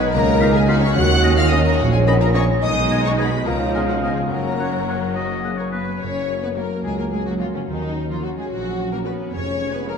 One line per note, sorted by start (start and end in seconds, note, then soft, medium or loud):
0.00 0.16 B2 medium
0.00 0.99 G#3 medium
0.00 0.68 D#4 medium
0.00 0.92 D#4 loud
0.00 0.16 F#4 medium
0.00 0.13 B4 loud
0.12 0.82 C#2 loud
0.12 0.83 C#2 loud
0.12 0.82 C#3 loud
0.12 0.98 C#3 medium
0.12 0.54 A#3 loud
0.12 0.53 A#4 loud
0.12 0.54 A#5 loud
0.40 0.48 B3 medium
0.40 0.51 D#4 medium
0.40 0.49 F4 medium
0.40 0.51 F5 medium
0.40 0.46 B6 medium
0.54 0.69 G#3 loud
0.54 0.68 G#4 loud
0.54 0.69 G#5 loud
0.68 0.82 F#3 loud
0.68 0.76 B3 medium
0.68 1.51 D#4 medium
0.68 0.79 D#4 medium
0.68 0.76 F4 medium
0.68 0.99 F4 medium
0.68 0.82 F#4 loud
0.68 0.78 F5 medium
0.68 0.82 F#5 loud
0.68 0.74 B6 medium
0.82 0.96 C#4 loud
0.82 0.96 C#5 loud
0.82 0.96 C#6 loud
0.95 1.65 D#2 loud
0.95 1.66 D#2 loud
0.95 1.65 D#3 loud
0.95 2.65 D#3 medium
0.95 2.59 C#4 loud
0.95 1.37 F#4 loud
0.95 1.37 F#5 loud
0.95 1.36 F#6 loud
1.23 1.31 A#3 medium
1.23 2.65 C#4 medium
1.23 1.34 C#4 medium
1.23 1.31 D#4 medium
1.23 1.34 D#5 medium
1.23 1.30 A#6 medium
1.37 1.44 F4 loud
1.37 1.51 F5 loud
1.37 1.51 F6 loud
1.50 1.58 A#3 medium
1.50 1.62 C#4 medium
1.50 1.59 D#4 medium
1.50 2.34 D#4 medium
1.50 1.58 D#4 loud
1.50 1.66 D#5 loud
1.50 1.62 D#5 medium
1.50 1.65 D#6 loud
1.50 1.57 A#6 medium
1.64 1.73 A#3 medium
1.64 1.79 A#4 medium
1.64 1.78 A#5 loud
1.78 2.49 A#1 loud
1.78 2.49 A#2 loud
1.78 1.94 F#3 medium
1.78 1.93 F#4 loud
1.78 2.65 C#5 medium
1.78 1.92 F#5 loud
1.92 2.01 G#3 medium
1.92 1.99 G#4 medium
1.92 1.98 G#5 loud
2.06 2.14 A#3 medium
2.06 2.15 B3 medium
2.06 2.16 C#4 medium
2.06 2.14 D#4 medium
2.06 2.65 A#4 medium
2.06 2.13 B4 medium
2.06 2.17 D#5 medium
2.06 2.13 B5 loud
2.06 2.13 A#6 medium
2.21 2.29 A#3 medium
2.21 2.35 A#4 medium
2.21 2.26 A#5 loud
2.34 2.42 A#3 medium
2.34 2.45 C#4 medium
2.34 2.49 C#4 loud
2.34 2.42 D#4 medium
2.34 3.17 D#4 medium
2.34 2.42 C#5 medium
2.34 2.45 D#5 medium
2.34 2.43 C#6 loud
2.34 2.42 A#6 medium
2.61 3.43 B1 medium
2.61 3.49 B1 medium
2.61 3.42 B2 medium
2.61 3.49 B2 medium
2.61 3.42 G#3 medium
2.61 3.42 D#4 medium
2.61 3.45 D#4 medium
2.61 3.04 D#5 loud
2.61 3.03 D#6 loud
2.66 3.05 D#4 loud
2.90 3.00 B3 medium
2.90 3.17 B3 medium
2.90 3.01 D#5 medium
2.90 2.97 G#6 medium
3.05 3.13 C#4 medium
3.05 3.10 C#5 medium
3.05 3.11 C#6 medium
3.18 3.73 B3 medium
3.18 3.29 B3 medium
3.18 3.33 B3 medium
3.18 4.02 D#4 medium
3.18 3.26 B4 medium
3.18 3.28 D#5 medium
3.18 3.46 B5 medium
3.18 3.25 G#6 medium
3.45 4.32 C#2 medium
3.45 4.33 C#3 medium
3.45 4.31 C#3 medium
3.45 4.31 F3 medium
3.45 3.60 A#3 medium
3.45 4.29 D#4 medium
3.45 4.32 F4 medium
3.45 3.55 A#4 medium
3.45 3.74 A#5 medium
3.74 3.83 G#3 medium
3.74 3.85 B3 medium
3.74 4.01 B3 medium
3.74 3.80 G#4 medium
3.74 3.85 D#5 medium
3.74 3.80 G#5 medium
3.74 3.81 F6 medium
3.88 4.03 F#3 medium
3.88 3.94 F#4 medium
3.88 3.95 F#5 medium
4.02 4.32 G#3 medium
4.02 4.13 B3 medium
4.02 4.34 D#4 soft
4.02 4.30 G#4 medium
4.02 4.13 D#5 medium
4.02 4.12 G#5 medium
4.02 4.10 F6 medium
4.30 5.78 F#1 medium
4.30 6.00 F#2 medium
4.30 5.15 F#2 medium
4.30 5.77 F#3 medium
4.30 5.15 A#3 medium
4.30 5.77 C#4 medium
4.30 5.58 F#4 medium
4.30 5.14 A#4 medium
4.30 5.14 A#5 medium
4.59 6.28 F#3 soft
4.59 4.70 A#3 soft
4.59 4.70 C#5 medium
4.59 4.65 F#6 soft
4.88 4.98 A#3 soft
4.88 5.72 A#3 soft
4.88 4.99 C#5 soft
4.88 4.95 F#6 soft
5.15 5.24 F#3 medium
5.15 5.42 F#4 medium
5.15 6.83 F#4 soft
5.15 5.60 D#5 medium
5.44 5.50 G#3 soft
5.44 5.55 A#3 soft
5.44 7.11 C#4 soft
5.44 5.50 G#4 medium
5.44 5.51 F#6 soft
5.58 5.73 A#3 medium
5.58 5.64 A#4 medium
5.58 5.72 C#5 medium
5.72 5.83 A#3 soft
5.72 6.55 A#3 soft
5.72 6.01 B3 soft
5.72 6.00 B4 medium
5.72 6.00 B4 soft
5.72 5.78 F#6 soft
6.01 6.68 F#1 medium
6.01 6.68 F#2 medium
6.01 7.70 F#2 medium
6.01 7.63 A#3 medium
6.01 6.42 C#4 medium
6.01 9.29 F#4 medium
6.01 6.42 C#5 medium
6.29 9.35 F#3 soft
6.43 6.49 B3 medium
6.43 6.49 B4 medium
6.56 6.77 A#3 medium
6.56 7.39 A#3 soft
6.56 6.65 A#3 medium
6.56 6.77 F#4 medium
6.56 6.84 A#4 medium
6.56 6.77 F#5 soft
6.84 7.51 C#2 medium
6.84 6.98 G#3 medium
6.84 8.77 F#4 soft
6.84 6.98 G#4 medium
6.98 7.04 A#3 medium
6.98 7.05 A#4 medium
7.12 7.18 G#3 medium
7.12 8.22 C#4 soft
7.12 7.26 G#4 medium
7.26 7.40 F#3 medium
7.26 7.33 F#4 medium
7.40 7.54 F3 medium
7.40 7.94 A#3 soft
7.40 7.61 A#3 soft
7.40 7.46 F4 medium
7.40 7.60 F#4 medium
7.40 7.60 F#5 medium
7.53 7.59 C#3 medium
7.53 7.61 C#4 medium
7.68 8.34 D#2 medium
7.68 9.35 D#3 medium
7.68 8.08 D#3 medium
7.68 9.98 C#4 medium
7.68 8.09 D#4 medium
7.95 9.35 A#3 soft
8.09 8.14 F3 medium
8.09 8.23 F4 medium
8.22 8.29 F#3 medium
8.22 8.43 A#3 medium
8.22 9.05 C#4 soft
8.22 8.43 F#4 medium
8.22 8.30 F#4 medium
8.22 8.43 C#5 soft
8.37 8.43 G#3 medium
8.37 8.51 G#4 medium
8.51 9.17 A#1 medium
8.51 8.91 F#3 medium
8.51 8.91 F#4 medium
8.51 9.36 A#4 soft
8.78 9.35 F#4 soft
8.92 8.97 A#3 medium
8.92 8.98 A#4 medium
9.05 9.26 A#3 medium
9.05 9.33 B3 medium
9.05 9.60 C#4 soft
9.05 9.26 F#4 soft
9.05 9.14 B4 medium
9.05 9.26 C#5 medium
9.33 9.98 F1 medium
9.33 9.98 F2 medium
9.33 9.98 F3 medium
9.33 9.74 C#4 medium
9.33 9.98 G#4 medium
9.33 9.74 C#5 medium
9.61 9.98 C#4 soft
9.74 9.88 B3 medium
9.74 9.89 B4 medium
9.88 9.98 G#3 medium
9.88 9.98 G#3 soft
9.88 9.98 A#3 medium
9.88 9.98 G#4 medium
9.88 9.97 A#4 medium
9.88 9.98 C#5 soft